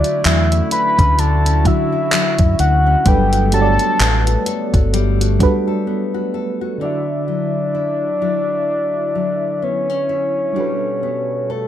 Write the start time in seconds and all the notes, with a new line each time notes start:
Already playing: D3 F#3 A3 D4 E4 F#4 A4 D5 E5
0.04 E4, closed hi-hat
0.24 E2 F#3 E5, clap, closed hi-hat
0.52 C#4, closed hi-hat
0.71 E4 B5, closed hi-hat
0.99 D2 C#4, kick, closed hi-hat
1.18 D3 F#4 A5, closed hi-hat
1.45 C#4, closed hi-hat
1.64 D3 F#3 D4 E4 F#4 E5, kick, closed hi-hat
1.92 E4
2.12 F#3, clap, closed hi-hat
2.39 F#2 C#4, kick, closed hi-hat
2.59 D2 E4 F#5, closed hi-hat
2.86 C#4
3.05 G1 F#3 G3 A3 B3 D4 A4 B4 G5, kick, closed hi-hat
3.33 F#4, closed hi-hat
3.52 G3 B3 D4 F#4 A4 C#5 A5, closed hi-hat
3.62 D5
3.79 A4, closed hi-hat
4.00 A1 B3, clap, closed hi-hat
4.27 F#4, closed hi-hat
4.46 A4, closed hi-hat
4.74 G1 F#4, kick, closed hi-hat
4.93 G3, closed hi-hat
5.21 F#4, closed hi-hat
5.39 G3 B3 D4 F#4 A4 B4, kick, closed hi-hat
5.67 A4
5.87 B3
6.14 F#4
6.34 A4
6.61 F#4
6.78 D3 F#3 D4 E4 D5 E5
6.84 F#4 E5
7.28 F#3
7.75 E4
8.22 F#3
9.15 F#3
9.62 B3 C#5
9.89 C#4
10.09 E4
10.53 B2 G3 D4 F#4 A4
10.58 A4 B4
11.03 B3
11.50 A4